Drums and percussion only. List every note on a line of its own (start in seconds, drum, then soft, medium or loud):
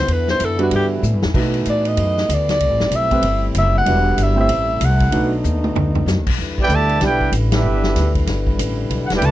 0.08 ride medium
0.28 snare soft
0.40 hi-hat pedal medium
0.40 ride medium
0.59 ride medium
0.71 ride medium
1.03 hi-hat pedal medium
1.22 snare medium
1.34 kick medium
1.34 crash medium
1.54 ride medium
1.65 hi-hat pedal medium
1.65 ride medium
1.85 ride medium
1.97 ride medium
2.17 snare soft
2.29 hi-hat pedal medium
2.29 ride medium
2.49 snare medium
2.49 ride medium
2.60 ride medium
2.80 snare medium
2.91 hi-hat pedal medium
2.91 ride medium
3.11 kick medium
3.11 ride medium
3.23 ride medium
3.55 hi-hat pedal medium
3.55 ride medium
3.86 ride medium
4.18 hi-hat pedal medium
4.18 ride medium
4.49 ride medium
4.81 hi-hat pedal medium
4.81 ride medium
5.00 kick medium
5.00 ride medium
5.12 ride medium
5.44 hi-hat pedal medium
5.64 mid tom medium
5.76 floor tom loud
5.95 floor tom medium
6.07 snare medium
6.07 hi-hat pedal medium
6.27 kick medium
6.27 crash loud
6.58 kick medium
6.70 hi-hat pedal medium
6.70 ride medium
6.89 ride soft
7.01 snare soft
7.01 ride medium
7.21 kick medium
7.32 hi-hat pedal medium
7.32 ride medium
7.52 snare loud
7.52 ride medium
7.83 snare medium
7.96 snare soft
7.96 hi-hat pedal medium
7.96 ride medium
8.15 kick medium
8.15 ride soft
8.27 snare soft
8.27 ride medium
8.47 kick medium
8.59 hi-hat pedal medium
8.59 ride medium
8.90 ride medium
9.10 snare medium
9.10 ride medium
9.22 hi-hat pedal medium
9.22 ride medium